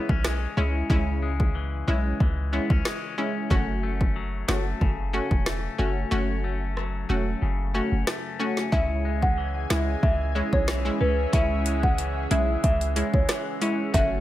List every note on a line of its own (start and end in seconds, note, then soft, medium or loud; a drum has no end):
0.00 0.89 C#3 medium
0.00 1.54 E3 medium
0.00 0.13 G#3 medium
0.00 0.23 G#3 medium
0.00 0.13 C#4 medium
0.00 0.14 E4 medium
0.09 0.47 B1 medium
0.09 0.56 C#4 medium
0.09 kick loud
0.25 1.21 G#3 medium
0.25 cross-stick medium
0.25 snare loud
0.57 0.83 C#2 medium
0.57 0.87 G#3 medium
0.57 0.90 C#4 medium
0.57 0.87 C#4 medium
0.57 0.88 E4 medium
0.90 1.84 C#2 loud
0.90 3.51 C#3 medium
0.90 1.50 G#3 medium
0.90 1.50 C#4 medium
0.90 2.52 C#4 medium
0.90 1.50 E4 loud
0.90 kick loud
1.22 1.86 G#3 medium
1.40 kick loud
1.55 2.19 E3 medium
1.88 2.13 B1 medium
1.88 2.09 G#3 medium
1.88 2.84 G#3 medium
1.88 2.09 C#4 medium
1.88 2.09 E4 medium
2.20 2.59 C#2 loud
2.20 3.58 E3 medium
2.20 kick medium
2.53 2.74 G#3 medium
2.53 2.70 B3 medium
2.53 2.74 C#4 medium
2.53 2.74 E4 medium
2.70 2.82 C#2 medium
2.70 3.17 C#4 medium
2.70 kick loud
2.85 3.58 G#3 medium
2.85 cross-stick medium
2.85 snare loud
3.18 3.48 G#3 medium
3.18 3.48 C#4 medium
3.18 3.51 C#4 medium
3.18 3.48 E4 medium
3.50 4.44 F#1 loud
3.50 6.10 F#2 medium
3.50 4.11 A3 medium
3.50 4.11 C#4 medium
3.50 5.13 C#4 medium
3.50 4.11 F#4 loud
3.50 kick loud
3.83 4.47 A3 medium
4.01 kick medium
4.16 6.76 F#3 medium
4.48 4.74 F#1 loud
4.48 4.70 A3 medium
4.48 5.45 A3 medium
4.48 4.70 C#4 medium
4.48 4.70 F#4 medium
4.48 cross-stick loud
4.48 snare loud
4.81 5.20 F#1 loud
4.81 7.41 C#3 medium
4.81 kick medium
5.13 5.35 A3 medium
5.13 5.35 C#4 medium
5.13 5.79 C#4 medium
5.13 5.35 F#4 medium
5.31 5.69 E1 medium
5.31 kick loud
5.46 6.43 A3 medium
5.46 cross-stick medium
5.46 snare loud
5.78 6.05 F#1 medium
5.78 6.09 A3 medium
5.78 6.09 C#4 medium
5.78 6.12 C#4 medium
5.78 6.09 F#4 medium
6.11 7.05 F#1 loud
6.11 8.72 F#2 medium
6.11 6.72 A3 medium
6.11 6.72 C#4 medium
6.11 7.74 C#4 medium
6.11 6.72 F#4 loud
6.44 7.08 A3 medium
6.77 8.79 F#3 medium
6.77 cross-stick medium
7.09 7.35 E1 medium
7.09 7.31 A3 medium
7.09 8.06 A3 medium
7.09 7.31 C#4 medium
7.09 7.31 F#4 medium
7.42 7.81 F#1 loud
7.42 8.71 C#3 medium
7.74 7.96 A3 medium
7.74 7.96 C#4 medium
7.74 8.39 C#4 medium
7.74 7.96 F#4 medium
7.92 8.04 F#1 loud
8.07 8.79 A3 medium
8.07 cross-stick medium
8.07 snare loud
8.40 8.70 A3 medium
8.40 8.70 C#4 medium
8.40 8.73 C#4 medium
8.40 8.70 F#4 medium
8.57 snare medium
8.72 9.66 C#2 loud
8.72 11.32 C#3 medium
8.72 9.33 G#3 medium
8.72 13.90 C#4 medium
8.72 9.33 C#4 medium
8.72 11.00 C#4 medium
8.72 9.33 E4 loud
8.72 13.90 G#4 medium
8.72 8.83 E5 loud
8.72 13.90 E5 medium
8.72 11.31 G#5 medium
8.72 kick loud
9.05 9.69 G#3 medium
9.22 9.32 F#5 medium
9.22 kick medium
9.38 10.02 E3 medium
9.70 9.96 C#2 medium
9.70 9.91 G#3 medium
9.70 10.34 G#3 medium
9.70 9.92 C#4 medium
9.70 9.92 E4 medium
9.70 9.81 E5 medium
9.70 cross-stick loud
9.70 snare loud
10.03 10.42 C#2 loud
10.03 10.67 E3 medium
10.03 10.14 E5 medium
10.03 kick medium
10.35 10.57 G#3 medium
10.35 11.65 G#3 medium
10.35 10.57 C#4 medium
10.35 10.57 E4 medium
10.53 10.90 B1 medium
10.53 10.63 C#5 medium
10.53 kick medium
10.68 11.97 E3 medium
10.68 cross-stick medium
10.68 snare loud
10.85 11.05 G#3 medium
10.85 11.05 C#4 medium
10.85 11.05 E4 medium
11.01 11.26 C#2 medium
11.01 11.33 C#4 medium
11.01 11.12 B4 medium
11.33 12.27 C#2 loud
11.33 13.94 C#3 medium
11.33 11.93 G#3 medium
11.33 11.94 C#4 medium
11.33 13.61 C#4 medium
11.33 11.94 E4 loud
11.33 11.44 E5 medium
11.33 14.20 F#5 medium
11.33 kick loud
11.33 closed hi-hat medium
11.66 12.30 G#3 medium
11.66 closed hi-hat medium
11.83 11.93 F#5 medium
11.83 kick loud
11.98 12.63 E3 medium
11.98 closed hi-hat medium
12.31 12.57 B1 loud
12.31 12.52 G#3 medium
12.31 12.95 G#3 medium
12.31 12.52 C#4 medium
12.31 12.53 E4 medium
12.31 12.42 E5 medium
12.31 closed hi-hat medium
12.64 13.03 C#2 loud
12.64 13.28 E3 medium
12.64 12.75 E5 medium
12.64 kick loud
12.64 closed hi-hat medium
12.81 closed hi-hat medium
12.96 13.18 G#3 medium
12.96 14.01 G#3 medium
12.96 13.18 C#4 medium
12.96 13.18 E4 medium
12.96 closed hi-hat medium
13.13 13.26 C#2 medium
13.13 13.23 C#5 medium
13.13 kick loud
13.29 14.01 E3 medium
13.29 cross-stick medium
13.29 snare loud
13.29 closed hi-hat medium
13.61 13.92 G#3 medium
13.61 13.92 C#4 medium
13.61 13.94 C#4 medium
13.61 13.92 E4 medium
13.61 closed hi-hat medium
13.94 14.20 F#1 loud
13.94 14.20 F#2 medium
13.94 14.20 A3 loud
13.94 14.20 C#4 medium
13.94 14.20 F#4 loud
13.94 14.20 A4 medium
13.94 14.05 E5 loud
13.94 14.20 A5 medium
13.94 kick loud
13.94 closed hi-hat medium